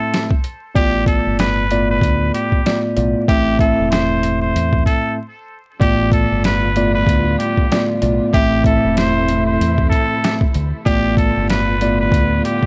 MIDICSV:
0, 0, Header, 1, 6, 480
1, 0, Start_track
1, 0, Tempo, 631579
1, 576, Time_signature, 4, 2, 24, 8
1, 9623, End_track
2, 0, Start_track
2, 0, Title_t, "Muted trumpet"
2, 0, Program_c, 0, 59
2, 0, Note_on_c, 0, 69, 85
2, 207, Note_off_c, 0, 69, 0
2, 577, Note_on_c, 0, 67, 123
2, 793, Note_off_c, 0, 67, 0
2, 814, Note_on_c, 0, 69, 85
2, 1031, Note_off_c, 0, 69, 0
2, 1061, Note_on_c, 0, 71, 92
2, 1417, Note_off_c, 0, 71, 0
2, 1446, Note_on_c, 0, 71, 83
2, 1761, Note_off_c, 0, 71, 0
2, 1779, Note_on_c, 0, 67, 80
2, 2136, Note_off_c, 0, 67, 0
2, 2500, Note_on_c, 0, 67, 126
2, 2714, Note_off_c, 0, 67, 0
2, 2737, Note_on_c, 0, 69, 89
2, 2952, Note_off_c, 0, 69, 0
2, 2969, Note_on_c, 0, 72, 82
2, 3331, Note_off_c, 0, 72, 0
2, 3356, Note_on_c, 0, 72, 72
2, 3675, Note_off_c, 0, 72, 0
2, 3692, Note_on_c, 0, 69, 88
2, 3920, Note_off_c, 0, 69, 0
2, 4416, Note_on_c, 0, 67, 116
2, 4632, Note_off_c, 0, 67, 0
2, 4657, Note_on_c, 0, 69, 87
2, 4873, Note_off_c, 0, 69, 0
2, 4903, Note_on_c, 0, 71, 88
2, 5258, Note_off_c, 0, 71, 0
2, 5278, Note_on_c, 0, 71, 75
2, 5596, Note_off_c, 0, 71, 0
2, 5614, Note_on_c, 0, 67, 76
2, 5973, Note_off_c, 0, 67, 0
2, 6338, Note_on_c, 0, 67, 120
2, 6553, Note_off_c, 0, 67, 0
2, 6582, Note_on_c, 0, 69, 86
2, 6796, Note_off_c, 0, 69, 0
2, 6822, Note_on_c, 0, 72, 89
2, 7178, Note_off_c, 0, 72, 0
2, 7194, Note_on_c, 0, 72, 69
2, 7514, Note_off_c, 0, 72, 0
2, 7519, Note_on_c, 0, 69, 88
2, 7885, Note_off_c, 0, 69, 0
2, 8256, Note_on_c, 0, 67, 124
2, 8472, Note_off_c, 0, 67, 0
2, 8492, Note_on_c, 0, 69, 86
2, 8710, Note_off_c, 0, 69, 0
2, 8739, Note_on_c, 0, 71, 93
2, 9096, Note_off_c, 0, 71, 0
2, 9126, Note_on_c, 0, 71, 82
2, 9440, Note_off_c, 0, 71, 0
2, 9458, Note_on_c, 0, 67, 81
2, 9623, Note_off_c, 0, 67, 0
2, 9623, End_track
3, 0, Start_track
3, 0, Title_t, "Tine electric piano"
3, 0, Program_c, 1, 4
3, 0, Note_on_c, 1, 45, 91
3, 0, Note_on_c, 1, 57, 86
3, 0, Note_on_c, 1, 60, 80
3, 0, Note_on_c, 1, 64, 82
3, 0, Note_on_c, 1, 76, 101
3, 241, Note_off_c, 1, 45, 0
3, 242, Note_off_c, 1, 57, 0
3, 243, Note_off_c, 1, 60, 0
3, 243, Note_off_c, 1, 64, 0
3, 244, Note_off_c, 1, 76, 0
3, 566, Note_on_c, 1, 45, 91
3, 568, Note_on_c, 1, 57, 87
3, 569, Note_on_c, 1, 59, 87
3, 570, Note_on_c, 1, 65, 87
3, 571, Note_on_c, 1, 74, 101
3, 1244, Note_off_c, 1, 45, 0
3, 1245, Note_off_c, 1, 57, 0
3, 1245, Note_off_c, 1, 59, 0
3, 1246, Note_off_c, 1, 65, 0
3, 1246, Note_off_c, 1, 74, 0
3, 1299, Note_on_c, 1, 45, 94
3, 1300, Note_on_c, 1, 57, 87
3, 1302, Note_on_c, 1, 59, 87
3, 1302, Note_on_c, 1, 65, 76
3, 1304, Note_on_c, 1, 74, 113
3, 1970, Note_off_c, 1, 45, 0
3, 1971, Note_off_c, 1, 57, 0
3, 1972, Note_off_c, 1, 59, 0
3, 1972, Note_off_c, 1, 65, 0
3, 1973, Note_off_c, 1, 74, 0
3, 2018, Note_on_c, 1, 45, 71
3, 2019, Note_on_c, 1, 57, 68
3, 2021, Note_on_c, 1, 59, 66
3, 2022, Note_on_c, 1, 65, 71
3, 2023, Note_on_c, 1, 74, 89
3, 2241, Note_off_c, 1, 45, 0
3, 2242, Note_off_c, 1, 57, 0
3, 2243, Note_off_c, 1, 59, 0
3, 2243, Note_off_c, 1, 65, 0
3, 2244, Note_off_c, 1, 74, 0
3, 2250, Note_on_c, 1, 45, 83
3, 2251, Note_on_c, 1, 57, 78
3, 2252, Note_on_c, 1, 59, 76
3, 2254, Note_on_c, 1, 65, 68
3, 2255, Note_on_c, 1, 74, 87
3, 2477, Note_off_c, 1, 45, 0
3, 2478, Note_off_c, 1, 57, 0
3, 2479, Note_off_c, 1, 59, 0
3, 2479, Note_off_c, 1, 65, 0
3, 2480, Note_off_c, 1, 74, 0
3, 2491, Note_on_c, 1, 45, 89
3, 2493, Note_on_c, 1, 57, 87
3, 2495, Note_on_c, 1, 60, 89
3, 2495, Note_on_c, 1, 64, 84
3, 2497, Note_on_c, 1, 76, 111
3, 2718, Note_off_c, 1, 45, 0
3, 2719, Note_off_c, 1, 57, 0
3, 2720, Note_off_c, 1, 60, 0
3, 2720, Note_off_c, 1, 64, 0
3, 2721, Note_off_c, 1, 76, 0
3, 2734, Note_on_c, 1, 45, 90
3, 2736, Note_on_c, 1, 57, 89
3, 2736, Note_on_c, 1, 60, 84
3, 2737, Note_on_c, 1, 64, 86
3, 2739, Note_on_c, 1, 76, 100
3, 3935, Note_off_c, 1, 45, 0
3, 3936, Note_off_c, 1, 57, 0
3, 3936, Note_off_c, 1, 60, 0
3, 3937, Note_off_c, 1, 64, 0
3, 3938, Note_off_c, 1, 76, 0
3, 4405, Note_on_c, 1, 45, 93
3, 4406, Note_on_c, 1, 57, 91
3, 4407, Note_on_c, 1, 59, 88
3, 4409, Note_on_c, 1, 65, 91
3, 4410, Note_on_c, 1, 74, 103
3, 5083, Note_off_c, 1, 45, 0
3, 5084, Note_off_c, 1, 57, 0
3, 5084, Note_off_c, 1, 59, 0
3, 5085, Note_off_c, 1, 65, 0
3, 5086, Note_off_c, 1, 74, 0
3, 5139, Note_on_c, 1, 45, 96
3, 5140, Note_on_c, 1, 57, 86
3, 5142, Note_on_c, 1, 59, 86
3, 5143, Note_on_c, 1, 65, 76
3, 5145, Note_on_c, 1, 74, 110
3, 5810, Note_off_c, 1, 45, 0
3, 5811, Note_off_c, 1, 57, 0
3, 5812, Note_off_c, 1, 59, 0
3, 5812, Note_off_c, 1, 65, 0
3, 5813, Note_off_c, 1, 74, 0
3, 5860, Note_on_c, 1, 45, 70
3, 5861, Note_on_c, 1, 57, 72
3, 5862, Note_on_c, 1, 59, 68
3, 5863, Note_on_c, 1, 65, 73
3, 5865, Note_on_c, 1, 74, 87
3, 6082, Note_off_c, 1, 45, 0
3, 6083, Note_off_c, 1, 57, 0
3, 6084, Note_off_c, 1, 59, 0
3, 6084, Note_off_c, 1, 65, 0
3, 6085, Note_off_c, 1, 74, 0
3, 6091, Note_on_c, 1, 45, 84
3, 6092, Note_on_c, 1, 57, 78
3, 6093, Note_on_c, 1, 59, 75
3, 6094, Note_on_c, 1, 65, 75
3, 6095, Note_on_c, 1, 74, 85
3, 6318, Note_off_c, 1, 45, 0
3, 6318, Note_off_c, 1, 57, 0
3, 6319, Note_off_c, 1, 59, 0
3, 6319, Note_off_c, 1, 65, 0
3, 6320, Note_off_c, 1, 74, 0
3, 6333, Note_on_c, 1, 45, 93
3, 6335, Note_on_c, 1, 57, 89
3, 6336, Note_on_c, 1, 60, 87
3, 6337, Note_on_c, 1, 64, 87
3, 6338, Note_on_c, 1, 76, 113
3, 6559, Note_off_c, 1, 45, 0
3, 6560, Note_off_c, 1, 57, 0
3, 6561, Note_off_c, 1, 60, 0
3, 6561, Note_off_c, 1, 64, 0
3, 6561, Note_off_c, 1, 76, 0
3, 6576, Note_on_c, 1, 45, 95
3, 6578, Note_on_c, 1, 57, 89
3, 6579, Note_on_c, 1, 60, 87
3, 6581, Note_on_c, 1, 64, 84
3, 6581, Note_on_c, 1, 76, 102
3, 7922, Note_off_c, 1, 45, 0
3, 7922, Note_off_c, 1, 57, 0
3, 7923, Note_off_c, 1, 60, 0
3, 7924, Note_off_c, 1, 64, 0
3, 7924, Note_off_c, 1, 76, 0
3, 8247, Note_on_c, 1, 45, 94
3, 8247, Note_on_c, 1, 57, 91
3, 8249, Note_on_c, 1, 59, 90
3, 8250, Note_on_c, 1, 65, 89
3, 8251, Note_on_c, 1, 74, 102
3, 8924, Note_off_c, 1, 45, 0
3, 8924, Note_off_c, 1, 57, 0
3, 8925, Note_off_c, 1, 59, 0
3, 8926, Note_off_c, 1, 65, 0
3, 8926, Note_off_c, 1, 74, 0
3, 8980, Note_on_c, 1, 45, 98
3, 8981, Note_on_c, 1, 57, 89
3, 8983, Note_on_c, 1, 59, 88
3, 8984, Note_on_c, 1, 65, 74
3, 8985, Note_on_c, 1, 74, 108
3, 9623, Note_off_c, 1, 45, 0
3, 9623, Note_off_c, 1, 57, 0
3, 9623, Note_off_c, 1, 59, 0
3, 9623, Note_off_c, 1, 65, 0
3, 9623, Note_off_c, 1, 74, 0
3, 9623, End_track
4, 0, Start_track
4, 0, Title_t, "String section"
4, 0, Program_c, 2, 48
4, 4411, Note_on_c, 2, 50, 80
4, 4411, Note_on_c, 2, 55, 66
4, 4411, Note_on_c, 2, 59, 69
4, 4411, Note_on_c, 2, 65, 92
4, 6314, Note_off_c, 2, 50, 0
4, 6314, Note_off_c, 2, 55, 0
4, 6314, Note_off_c, 2, 59, 0
4, 6314, Note_off_c, 2, 65, 0
4, 6336, Note_on_c, 2, 48, 84
4, 6336, Note_on_c, 2, 52, 77
4, 6336, Note_on_c, 2, 57, 77
4, 6336, Note_on_c, 2, 64, 93
4, 8237, Note_off_c, 2, 48, 0
4, 8237, Note_off_c, 2, 52, 0
4, 8237, Note_off_c, 2, 57, 0
4, 8237, Note_off_c, 2, 64, 0
4, 8244, Note_on_c, 2, 50, 80
4, 8244, Note_on_c, 2, 55, 81
4, 8244, Note_on_c, 2, 59, 74
4, 8244, Note_on_c, 2, 65, 92
4, 9623, Note_off_c, 2, 50, 0
4, 9623, Note_off_c, 2, 55, 0
4, 9623, Note_off_c, 2, 59, 0
4, 9623, Note_off_c, 2, 65, 0
4, 9623, End_track
5, 0, Start_track
5, 0, Title_t, "Fingered electric bass"
5, 0, Program_c, 3, 33
5, 577, Note_on_c, 3, 33, 106
5, 911, Note_off_c, 3, 33, 0
5, 962, Note_on_c, 3, 31, 90
5, 1509, Note_off_c, 3, 31, 0
5, 1533, Note_on_c, 3, 38, 96
5, 1745, Note_off_c, 3, 38, 0
5, 2260, Note_on_c, 3, 35, 99
5, 2382, Note_off_c, 3, 35, 0
5, 2498, Note_on_c, 3, 33, 107
5, 2831, Note_off_c, 3, 33, 0
5, 2882, Note_on_c, 3, 28, 89
5, 3429, Note_off_c, 3, 28, 0
5, 3460, Note_on_c, 3, 40, 86
5, 3669, Note_off_c, 3, 40, 0
5, 4417, Note_on_c, 3, 33, 111
5, 4751, Note_off_c, 3, 33, 0
5, 4801, Note_on_c, 3, 31, 91
5, 5349, Note_off_c, 3, 31, 0
5, 5373, Note_on_c, 3, 38, 99
5, 5585, Note_off_c, 3, 38, 0
5, 6101, Note_on_c, 3, 35, 99
5, 6223, Note_off_c, 3, 35, 0
5, 6337, Note_on_c, 3, 33, 108
5, 6671, Note_off_c, 3, 33, 0
5, 6722, Note_on_c, 3, 28, 94
5, 7270, Note_off_c, 3, 28, 0
5, 7300, Note_on_c, 3, 40, 87
5, 7509, Note_off_c, 3, 40, 0
5, 8021, Note_on_c, 3, 38, 94
5, 8143, Note_off_c, 3, 38, 0
5, 8257, Note_on_c, 3, 33, 112
5, 8591, Note_off_c, 3, 33, 0
5, 8641, Note_on_c, 3, 31, 89
5, 9189, Note_off_c, 3, 31, 0
5, 9212, Note_on_c, 3, 38, 98
5, 9424, Note_off_c, 3, 38, 0
5, 9623, End_track
6, 0, Start_track
6, 0, Title_t, "Drums"
6, 104, Note_on_c, 9, 42, 96
6, 107, Note_on_c, 9, 38, 114
6, 180, Note_off_c, 9, 42, 0
6, 183, Note_off_c, 9, 38, 0
6, 232, Note_on_c, 9, 36, 91
6, 308, Note_off_c, 9, 36, 0
6, 334, Note_on_c, 9, 42, 67
6, 410, Note_off_c, 9, 42, 0
6, 575, Note_on_c, 9, 36, 117
6, 579, Note_on_c, 9, 42, 85
6, 651, Note_off_c, 9, 36, 0
6, 655, Note_off_c, 9, 42, 0
6, 808, Note_on_c, 9, 36, 94
6, 818, Note_on_c, 9, 42, 64
6, 884, Note_off_c, 9, 36, 0
6, 894, Note_off_c, 9, 42, 0
6, 1056, Note_on_c, 9, 42, 97
6, 1062, Note_on_c, 9, 38, 114
6, 1132, Note_off_c, 9, 42, 0
6, 1138, Note_off_c, 9, 38, 0
6, 1297, Note_on_c, 9, 42, 75
6, 1373, Note_off_c, 9, 42, 0
6, 1531, Note_on_c, 9, 36, 95
6, 1546, Note_on_c, 9, 42, 89
6, 1607, Note_off_c, 9, 36, 0
6, 1622, Note_off_c, 9, 42, 0
6, 1782, Note_on_c, 9, 42, 70
6, 1858, Note_off_c, 9, 42, 0
6, 1916, Note_on_c, 9, 36, 83
6, 1992, Note_off_c, 9, 36, 0
6, 2022, Note_on_c, 9, 42, 94
6, 2026, Note_on_c, 9, 38, 113
6, 2098, Note_off_c, 9, 42, 0
6, 2102, Note_off_c, 9, 38, 0
6, 2254, Note_on_c, 9, 42, 66
6, 2330, Note_off_c, 9, 42, 0
6, 2495, Note_on_c, 9, 36, 116
6, 2500, Note_on_c, 9, 42, 85
6, 2571, Note_off_c, 9, 36, 0
6, 2576, Note_off_c, 9, 42, 0
6, 2729, Note_on_c, 9, 36, 94
6, 2740, Note_on_c, 9, 42, 67
6, 2805, Note_off_c, 9, 36, 0
6, 2816, Note_off_c, 9, 42, 0
6, 2978, Note_on_c, 9, 42, 100
6, 2983, Note_on_c, 9, 38, 114
6, 3054, Note_off_c, 9, 42, 0
6, 3059, Note_off_c, 9, 38, 0
6, 3216, Note_on_c, 9, 42, 77
6, 3292, Note_off_c, 9, 42, 0
6, 3465, Note_on_c, 9, 42, 88
6, 3541, Note_off_c, 9, 42, 0
6, 3593, Note_on_c, 9, 36, 93
6, 3669, Note_off_c, 9, 36, 0
6, 3695, Note_on_c, 9, 36, 82
6, 3702, Note_on_c, 9, 42, 72
6, 3771, Note_off_c, 9, 36, 0
6, 3778, Note_off_c, 9, 42, 0
6, 4415, Note_on_c, 9, 36, 119
6, 4420, Note_on_c, 9, 42, 86
6, 4491, Note_off_c, 9, 36, 0
6, 4496, Note_off_c, 9, 42, 0
6, 4648, Note_on_c, 9, 36, 96
6, 4659, Note_on_c, 9, 42, 64
6, 4724, Note_off_c, 9, 36, 0
6, 4735, Note_off_c, 9, 42, 0
6, 4896, Note_on_c, 9, 42, 103
6, 4902, Note_on_c, 9, 38, 113
6, 4972, Note_off_c, 9, 42, 0
6, 4978, Note_off_c, 9, 38, 0
6, 5136, Note_on_c, 9, 42, 79
6, 5212, Note_off_c, 9, 42, 0
6, 5371, Note_on_c, 9, 36, 99
6, 5386, Note_on_c, 9, 42, 89
6, 5447, Note_off_c, 9, 36, 0
6, 5462, Note_off_c, 9, 42, 0
6, 5623, Note_on_c, 9, 42, 72
6, 5699, Note_off_c, 9, 42, 0
6, 5757, Note_on_c, 9, 36, 84
6, 5833, Note_off_c, 9, 36, 0
6, 5865, Note_on_c, 9, 42, 97
6, 5868, Note_on_c, 9, 38, 117
6, 5941, Note_off_c, 9, 42, 0
6, 5944, Note_off_c, 9, 38, 0
6, 6094, Note_on_c, 9, 42, 68
6, 6170, Note_off_c, 9, 42, 0
6, 6335, Note_on_c, 9, 36, 120
6, 6339, Note_on_c, 9, 42, 85
6, 6411, Note_off_c, 9, 36, 0
6, 6415, Note_off_c, 9, 42, 0
6, 6569, Note_on_c, 9, 36, 96
6, 6579, Note_on_c, 9, 42, 65
6, 6645, Note_off_c, 9, 36, 0
6, 6655, Note_off_c, 9, 42, 0
6, 6817, Note_on_c, 9, 42, 103
6, 6823, Note_on_c, 9, 38, 117
6, 6893, Note_off_c, 9, 42, 0
6, 6899, Note_off_c, 9, 38, 0
6, 7056, Note_on_c, 9, 42, 74
6, 7132, Note_off_c, 9, 42, 0
6, 7306, Note_on_c, 9, 42, 87
6, 7382, Note_off_c, 9, 42, 0
6, 7433, Note_on_c, 9, 36, 94
6, 7509, Note_off_c, 9, 36, 0
6, 7535, Note_on_c, 9, 36, 84
6, 7542, Note_on_c, 9, 42, 71
6, 7611, Note_off_c, 9, 36, 0
6, 7618, Note_off_c, 9, 42, 0
6, 7783, Note_on_c, 9, 42, 97
6, 7787, Note_on_c, 9, 38, 113
6, 7859, Note_off_c, 9, 42, 0
6, 7863, Note_off_c, 9, 38, 0
6, 7912, Note_on_c, 9, 36, 87
6, 7988, Note_off_c, 9, 36, 0
6, 8014, Note_on_c, 9, 42, 69
6, 8090, Note_off_c, 9, 42, 0
6, 8255, Note_on_c, 9, 36, 118
6, 8259, Note_on_c, 9, 42, 89
6, 8331, Note_off_c, 9, 36, 0
6, 8335, Note_off_c, 9, 42, 0
6, 8488, Note_on_c, 9, 36, 96
6, 8499, Note_on_c, 9, 42, 64
6, 8564, Note_off_c, 9, 36, 0
6, 8575, Note_off_c, 9, 42, 0
6, 8737, Note_on_c, 9, 42, 99
6, 8742, Note_on_c, 9, 38, 117
6, 8813, Note_off_c, 9, 42, 0
6, 8818, Note_off_c, 9, 38, 0
6, 8976, Note_on_c, 9, 42, 77
6, 9052, Note_off_c, 9, 42, 0
6, 9210, Note_on_c, 9, 36, 97
6, 9225, Note_on_c, 9, 42, 89
6, 9286, Note_off_c, 9, 36, 0
6, 9301, Note_off_c, 9, 42, 0
6, 9462, Note_on_c, 9, 42, 72
6, 9538, Note_off_c, 9, 42, 0
6, 9596, Note_on_c, 9, 36, 86
6, 9623, Note_off_c, 9, 36, 0
6, 9623, End_track
0, 0, End_of_file